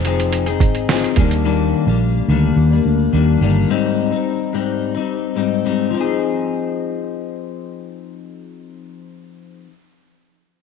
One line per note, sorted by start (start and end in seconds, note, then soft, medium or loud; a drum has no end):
0.00 0.60 F1 medium
0.05 0.47 F3 medium
0.05 0.47 C4 medium
0.05 0.47 D#4 medium
0.05 0.45 G#4 medium
0.05 closed hi-hat medium
0.20 closed hi-hat soft
0.33 closed hi-hat medium
0.46 0.89 C4 soft
0.46 0.89 D#4 medium
0.46 0.88 G#4 medium
0.46 closed hi-hat soft
0.60 1.05 G#1 medium
0.60 kick medium
0.60 closed hi-hat medium
0.75 closed hi-hat soft
0.89 1.17 F3 medium
0.89 1.17 C4 medium
0.89 1.18 D#4 medium
0.89 1.18 G#4 medium
0.89 snare medium
0.89 closed hi-hat medium
1.04 closed hi-hat soft
1.16 1.73 D#2 medium
1.16 1.44 D#3 medium
1.16 1.44 G3 medium
1.16 1.45 A#3 medium
1.16 1.45 D4 medium
1.16 kick medium
1.16 closed hi-hat medium
1.31 closed hi-hat soft
1.45 1.87 D#3 medium
1.45 1.87 G3 medium
1.45 1.87 A#3 medium
1.45 1.86 D4 medium
1.87 2.20 A#1 medium
1.87 2.29 G3 soft
1.87 2.29 A#3 soft
1.87 2.29 D4 medium
2.28 2.51 D2 medium
2.28 2.71 D#3 medium
2.28 2.71 G3 medium
2.28 2.71 A#3 medium
2.28 2.70 D4 medium
2.56 2.79 D#2 medium
2.71 3.12 G3 soft
2.71 3.13 A#3 medium
2.71 3.13 D4 medium
2.85 3.08 D2 medium
3.13 3.36 D#2 medium
3.13 3.40 D#3 medium
3.13 3.41 G3 medium
3.13 3.41 A#3 medium
3.13 3.42 D4 medium
3.41 3.63 G1 medium
3.41 3.69 D#3 medium
3.41 3.69 G3 medium
3.41 3.70 A#3 medium
3.41 3.70 D4 medium
3.70 4.12 G#2 medium
3.70 4.12 G3 medium
3.70 4.11 C4 medium
3.70 4.10 D#4 medium
4.11 4.53 G3 soft
4.11 4.53 C4 soft
4.11 4.53 D#4 medium
4.53 4.95 G#2 medium
4.53 4.96 G3 medium
4.53 4.95 C4 medium
4.53 4.94 D#4 medium
4.95 5.35 G3 soft
4.95 5.36 C4 soft
4.95 5.37 D#4 medium
5.36 5.64 G#2 medium
5.36 5.65 G3 medium
5.36 5.65 C4 medium
5.36 5.66 D#4 medium
5.65 5.93 G#2 medium
5.65 5.90 G3 medium
5.65 5.93 C4 medium
5.65 5.94 D#4 medium
5.90 9.67 F3 medium
5.90 9.69 C4 medium
5.98 9.70 D#4 medium
5.98 9.72 G#4 medium